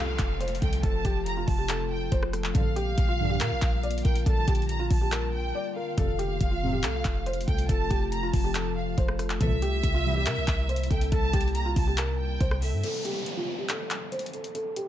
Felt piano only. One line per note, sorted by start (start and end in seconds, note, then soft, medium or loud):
0.00 0.38 A4 medium
0.40 0.57 C5 medium
0.62 0.78 A4 medium
0.83 1.00 A4 loud
1.05 1.35 G4 loud
1.37 1.53 F4 medium
1.58 1.66 G4 medium
1.69 2.09 A4 medium
2.12 2.28 C5 medium
2.33 2.50 A4 medium
2.55 2.71 A4 loud
2.76 3.06 G4 loud
3.08 3.25 F4 medium
3.30 3.38 G4 medium
3.40 3.81 A#4 medium
3.83 4.00 D5 medium
4.05 4.21 A#4 medium
4.26 4.43 A4 loud
4.48 4.78 G4 medium
4.79 4.96 F4 medium
5.01 5.09 G4 medium
5.12 5.52 A#4 medium
5.55 5.71 D5 medium
5.76 5.93 A#4 medium
5.98 6.14 A4 loud
6.19 6.49 G4 loud
6.51 6.67 F4 medium
6.73 6.81 G4 medium
6.83 7.23 A4 medium
7.26 7.43 C5 medium
7.47 7.64 A4 medium
7.69 7.85 A4 loud
7.90 8.21 G4 medium
8.23 8.39 F4 medium
8.44 8.52 G4 medium
8.98 9.14 C5 medium
9.19 9.36 A4 medium
9.41 9.57 A4 loud
9.62 9.92 G4 loud
9.94 10.10 F4 medium
10.15 10.24 G4 medium
10.26 10.67 A#4 medium
10.69 10.85 C5 medium
10.90 11.07 A4 medium
11.12 11.28 A4 loud
11.33 11.64 G4 medium
11.66 11.82 F4 medium
11.87 11.95 G4 medium
11.98 12.38 A#4 medium
12.41 12.57 C5 medium
12.62 12.79 A4 medium
12.84 13.00 A4 loud
13.05 13.35 G4 medium
13.37 13.53 F4 medium
13.59 13.67 G4 medium
13.69 14.09 A4 medium
14.12 14.28 C5 medium
14.34 14.50 A4 medium
14.55 14.71 A4 loud
14.77 14.88 G4 medium